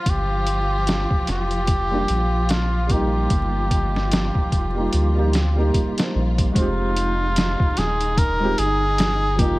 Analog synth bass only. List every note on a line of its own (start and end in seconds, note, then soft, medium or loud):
0.06 1.06 G1 medium
1.28 2.06 F1 medium
2.09 3.27 A#1 medium
3.31 4.31 G1 loud
4.53 4.89 F1 medium
4.93 5.71 D2 medium
6.15 6.51 A#1 medium
6.56 7.55 F1 loud
7.78 8.55 D#1 medium
8.59 9.59 G1 medium